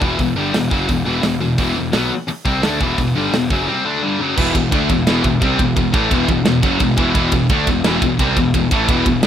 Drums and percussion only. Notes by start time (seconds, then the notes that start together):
0.02 kick
0.19 kick, open hi-hat
0.54 snare, open hi-hat
0.71 kick
0.89 kick, open hi-hat
1.23 snare, open hi-hat
1.58 kick, open hi-hat
1.93 snare, open hi-hat
2.28 open hi-hat
2.45 kick
2.63 snare, open hi-hat
2.81 kick
2.98 kick, open hi-hat
3.33 snare, open hi-hat
3.50 kick
4.37 kick, crash
4.55 kick, ride
4.72 kick, ride
4.89 kick, ride
5.07 snare, ride
5.24 kick, ride
5.42 kick, ride
5.59 kick, ride
5.76 kick, ride
5.94 kick, ride
6.11 kick, ride
6.28 kick, ride
6.45 snare, ride
6.63 kick, ride
6.80 kick, ride
6.97 kick, ride
7.15 kick, ride
7.32 kick, ride
7.49 kick, ride
7.67 kick, ride
7.84 snare, ride
8.02 kick, ride
8.19 kick, ride
8.37 kick, ride
8.54 kick, ride
8.71 kick, ride
8.88 kick, ride
9.06 kick, ride
9.23 snare, ride